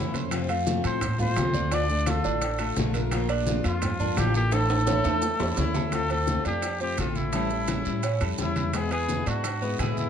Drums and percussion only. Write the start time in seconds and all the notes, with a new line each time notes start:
0.14 high conga, high timbale, short guiro, maracas
0.31 high bongo, high conga, high timbale, long guiro, maracas
0.49 high conga, high timbale, maracas
0.67 high bongo, high conga, short guiro, maracas
0.84 high conga, high timbale, short guiro, maracas
1.01 high bongo, high conga, low conga, high timbale, long guiro, maracas
1.19 high conga, low conga, maracas
1.36 high bongo, low bongo, high conga, high timbale, low timbale, short guiro, maracas
1.54 high conga, short guiro, maracas
1.71 high bongo, high conga, high timbale, long guiro, maracas
1.89 high bongo, high conga, maracas
2.06 high bongo, high conga, high timbale, short guiro, maracas
2.24 high bongo, high conga, short guiro, maracas
2.41 high bongo, high conga, high timbale, long guiro, maracas
2.59 high bongo, high conga, high timbale, maracas
2.76 high bongo, low bongo, high conga, short guiro, maracas
2.94 high conga, high timbale, short guiro, maracas
3.11 high bongo, high conga, high timbale, long guiro, maracas
3.29 high conga, high timbale, maracas
3.46 high bongo, high conga, short guiro, maracas
3.64 high conga, high timbale, short guiro, maracas
3.82 high bongo, high conga, low conga, high timbale, long guiro, maracas
4.00 high conga, low conga, maracas
4.17 high bongo, low bongo, high conga, high timbale, short guiro, maracas
4.34 short guiro, maracas
4.52 high bongo, high conga, high timbale, long guiro, maracas
4.70 high bongo, high conga, high timbale, maracas
4.87 high bongo, high conga, high timbale, short guiro, maracas
5.04 high bongo, high conga, high timbale, short guiro, maracas
5.22 high bongo, high conga, long guiro, maracas
5.40 high bongo, high conga, low timbale, maracas
5.57 low bongo, high conga, low timbale, short guiro, maracas
5.74 low bongo, high conga, low timbale, short guiro, maracas
5.92 high bongo, high conga, high timbale, long guiro, maracas
6.10 high conga, high timbale, maracas
6.27 high bongo, high conga, short guiro, maracas
6.45 high conga, high timbale, short guiro, maracas
6.62 high bongo, high conga, high timbale, long guiro, maracas
6.80 high conga, maracas
6.97 high bongo, low bongo, high conga, high timbale, short guiro, maracas
7.15 high conga, short guiro, maracas
7.33 high bongo, high conga, high timbale, long guiro, maracas
7.50 high bongo, high conga, maracas
7.67 high bongo, high conga, high timbale, short guiro, maracas
7.85 high bongo, high conga, short guiro, maracas
8.03 high bongo, high conga, high timbale, long guiro, maracas
8.21 high bongo, high conga, high timbale, maracas
8.38 high bongo, low bongo, high conga, short guiro, maracas
8.56 high conga, high timbale, short guiro, maracas
8.73 high bongo, high conga, high timbale, long guiro, maracas
8.91 high conga, high timbale, maracas
9.08 high bongo, high conga, short guiro, maracas
9.26 high conga, high timbale, short guiro, maracas
9.44 high bongo, high conga, high timbale, long guiro, maracas
9.62 high conga, maracas
9.79 high bongo, low bongo, high conga, high timbale, short guiro, maracas
9.97 high conga, short guiro, maracas